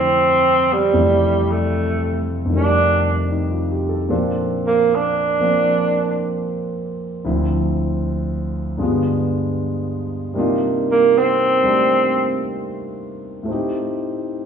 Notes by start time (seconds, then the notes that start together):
Already playing: F2 C3 D3 E3 F3 G3 A3 C4
0.73 G3
0.93 F2 C3 E3 G3 A3
1.51 A3
2.45 F2 C3
2.50 D#3 G3
2.54 A3 D4
3.31 D#4
3.50 F4
3.71 G4
3.89 A4
4.09 A#2 F3 C4 D4 A4
4.67 A#3
4.95 D4
5.39 F3 A#3 C4
7.25 D2 D3 F3 C4 E4
8.77 G2 D3 G#3 B3
8.82 F4
10.34 C3 G3 A#3 D4
10.38 D#4 F4
10.92 A#3
11.18 C4
11.63 G3 A3 C4 D4
13.43 A2 A3
13.48 C4 D#4
13.54 G4